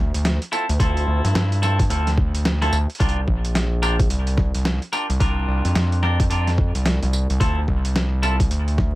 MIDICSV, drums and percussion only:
0, 0, Header, 1, 2, 480
1, 0, Start_track
1, 0, Key_signature, -1, "minor"
1, 0, Tempo, 550459
1, 697, Time_signature, 4, 2, 24, 8
1, 7809, End_track
2, 0, Start_track
2, 0, Title_t, "Drums"
2, 126, Note_on_c, 9, 42, 58
2, 213, Note_off_c, 9, 42, 0
2, 218, Note_on_c, 9, 38, 122
2, 218, Note_on_c, 9, 42, 69
2, 305, Note_off_c, 9, 38, 0
2, 305, Note_off_c, 9, 42, 0
2, 365, Note_on_c, 9, 42, 38
2, 452, Note_off_c, 9, 42, 0
2, 458, Note_on_c, 9, 54, 66
2, 546, Note_off_c, 9, 54, 0
2, 606, Note_on_c, 9, 42, 55
2, 693, Note_off_c, 9, 42, 0
2, 697, Note_on_c, 9, 36, 127
2, 699, Note_on_c, 9, 42, 73
2, 784, Note_off_c, 9, 36, 0
2, 786, Note_off_c, 9, 42, 0
2, 846, Note_on_c, 9, 42, 37
2, 933, Note_off_c, 9, 42, 0
2, 1087, Note_on_c, 9, 40, 38
2, 1087, Note_on_c, 9, 42, 53
2, 1174, Note_off_c, 9, 40, 0
2, 1174, Note_off_c, 9, 42, 0
2, 1179, Note_on_c, 9, 38, 119
2, 1179, Note_on_c, 9, 42, 72
2, 1266, Note_off_c, 9, 38, 0
2, 1266, Note_off_c, 9, 42, 0
2, 1326, Note_on_c, 9, 42, 38
2, 1413, Note_off_c, 9, 42, 0
2, 1419, Note_on_c, 9, 40, 36
2, 1419, Note_on_c, 9, 54, 58
2, 1506, Note_off_c, 9, 40, 0
2, 1506, Note_off_c, 9, 54, 0
2, 1564, Note_on_c, 9, 36, 116
2, 1566, Note_on_c, 9, 42, 58
2, 1652, Note_off_c, 9, 36, 0
2, 1653, Note_off_c, 9, 42, 0
2, 1659, Note_on_c, 9, 42, 73
2, 1747, Note_off_c, 9, 42, 0
2, 1806, Note_on_c, 9, 38, 41
2, 1806, Note_on_c, 9, 42, 40
2, 1893, Note_off_c, 9, 38, 0
2, 1893, Note_off_c, 9, 42, 0
2, 1897, Note_on_c, 9, 36, 108
2, 1984, Note_off_c, 9, 36, 0
2, 2046, Note_on_c, 9, 42, 57
2, 2133, Note_off_c, 9, 42, 0
2, 2139, Note_on_c, 9, 38, 127
2, 2139, Note_on_c, 9, 42, 70
2, 2226, Note_off_c, 9, 38, 0
2, 2226, Note_off_c, 9, 42, 0
2, 2286, Note_on_c, 9, 40, 39
2, 2286, Note_on_c, 9, 42, 40
2, 2373, Note_off_c, 9, 40, 0
2, 2373, Note_off_c, 9, 42, 0
2, 2378, Note_on_c, 9, 54, 64
2, 2465, Note_off_c, 9, 54, 0
2, 2526, Note_on_c, 9, 42, 26
2, 2572, Note_off_c, 9, 42, 0
2, 2572, Note_on_c, 9, 42, 34
2, 2617, Note_on_c, 9, 36, 127
2, 2619, Note_off_c, 9, 42, 0
2, 2619, Note_on_c, 9, 42, 70
2, 2692, Note_off_c, 9, 42, 0
2, 2692, Note_on_c, 9, 42, 47
2, 2705, Note_off_c, 9, 36, 0
2, 2779, Note_off_c, 9, 42, 0
2, 2857, Note_on_c, 9, 36, 63
2, 2944, Note_off_c, 9, 36, 0
2, 3005, Note_on_c, 9, 42, 54
2, 3092, Note_off_c, 9, 42, 0
2, 3097, Note_on_c, 9, 38, 127
2, 3097, Note_on_c, 9, 42, 68
2, 3184, Note_off_c, 9, 38, 0
2, 3184, Note_off_c, 9, 42, 0
2, 3337, Note_on_c, 9, 54, 57
2, 3424, Note_off_c, 9, 54, 0
2, 3484, Note_on_c, 9, 36, 121
2, 3484, Note_on_c, 9, 42, 58
2, 3571, Note_off_c, 9, 36, 0
2, 3571, Note_off_c, 9, 42, 0
2, 3577, Note_on_c, 9, 42, 74
2, 3664, Note_off_c, 9, 42, 0
2, 3723, Note_on_c, 9, 42, 40
2, 3810, Note_off_c, 9, 42, 0
2, 3815, Note_on_c, 9, 40, 48
2, 3817, Note_on_c, 9, 36, 106
2, 3902, Note_off_c, 9, 40, 0
2, 3904, Note_off_c, 9, 36, 0
2, 3963, Note_on_c, 9, 42, 56
2, 4050, Note_off_c, 9, 42, 0
2, 4056, Note_on_c, 9, 38, 126
2, 4056, Note_on_c, 9, 42, 70
2, 4144, Note_off_c, 9, 38, 0
2, 4144, Note_off_c, 9, 42, 0
2, 4204, Note_on_c, 9, 42, 37
2, 4291, Note_off_c, 9, 42, 0
2, 4297, Note_on_c, 9, 54, 62
2, 4384, Note_off_c, 9, 54, 0
2, 4445, Note_on_c, 9, 42, 52
2, 4533, Note_off_c, 9, 42, 0
2, 4538, Note_on_c, 9, 36, 127
2, 4538, Note_on_c, 9, 42, 70
2, 4625, Note_off_c, 9, 36, 0
2, 4626, Note_off_c, 9, 42, 0
2, 4926, Note_on_c, 9, 40, 39
2, 4926, Note_on_c, 9, 42, 52
2, 5014, Note_off_c, 9, 40, 0
2, 5014, Note_off_c, 9, 42, 0
2, 5018, Note_on_c, 9, 38, 126
2, 5018, Note_on_c, 9, 42, 66
2, 5105, Note_off_c, 9, 38, 0
2, 5105, Note_off_c, 9, 42, 0
2, 5165, Note_on_c, 9, 42, 35
2, 5252, Note_off_c, 9, 42, 0
2, 5257, Note_on_c, 9, 40, 35
2, 5344, Note_off_c, 9, 40, 0
2, 5405, Note_on_c, 9, 36, 114
2, 5405, Note_on_c, 9, 42, 58
2, 5492, Note_off_c, 9, 36, 0
2, 5492, Note_off_c, 9, 42, 0
2, 5498, Note_on_c, 9, 42, 70
2, 5585, Note_off_c, 9, 42, 0
2, 5645, Note_on_c, 9, 38, 37
2, 5645, Note_on_c, 9, 42, 36
2, 5733, Note_off_c, 9, 38, 0
2, 5733, Note_off_c, 9, 42, 0
2, 5738, Note_on_c, 9, 36, 105
2, 5825, Note_off_c, 9, 36, 0
2, 5886, Note_on_c, 9, 42, 50
2, 5973, Note_off_c, 9, 42, 0
2, 5978, Note_on_c, 9, 38, 122
2, 5978, Note_on_c, 9, 42, 64
2, 6065, Note_off_c, 9, 38, 0
2, 6065, Note_off_c, 9, 42, 0
2, 6126, Note_on_c, 9, 40, 38
2, 6126, Note_on_c, 9, 42, 36
2, 6213, Note_off_c, 9, 40, 0
2, 6213, Note_off_c, 9, 42, 0
2, 6219, Note_on_c, 9, 54, 62
2, 6307, Note_off_c, 9, 54, 0
2, 6366, Note_on_c, 9, 42, 50
2, 6453, Note_off_c, 9, 42, 0
2, 6457, Note_on_c, 9, 36, 127
2, 6459, Note_on_c, 9, 42, 65
2, 6544, Note_off_c, 9, 36, 0
2, 6546, Note_off_c, 9, 42, 0
2, 6697, Note_on_c, 9, 36, 61
2, 6784, Note_off_c, 9, 36, 0
2, 6844, Note_on_c, 9, 42, 49
2, 6931, Note_off_c, 9, 42, 0
2, 6938, Note_on_c, 9, 38, 118
2, 6938, Note_on_c, 9, 42, 67
2, 7025, Note_off_c, 9, 38, 0
2, 7025, Note_off_c, 9, 42, 0
2, 7177, Note_on_c, 9, 54, 61
2, 7264, Note_off_c, 9, 54, 0
2, 7324, Note_on_c, 9, 36, 105
2, 7325, Note_on_c, 9, 42, 54
2, 7411, Note_off_c, 9, 36, 0
2, 7412, Note_off_c, 9, 42, 0
2, 7419, Note_on_c, 9, 42, 67
2, 7507, Note_off_c, 9, 42, 0
2, 7567, Note_on_c, 9, 42, 36
2, 7654, Note_off_c, 9, 42, 0
2, 7657, Note_on_c, 9, 36, 105
2, 7659, Note_on_c, 9, 40, 50
2, 7744, Note_off_c, 9, 36, 0
2, 7746, Note_off_c, 9, 40, 0
2, 7809, End_track
0, 0, End_of_file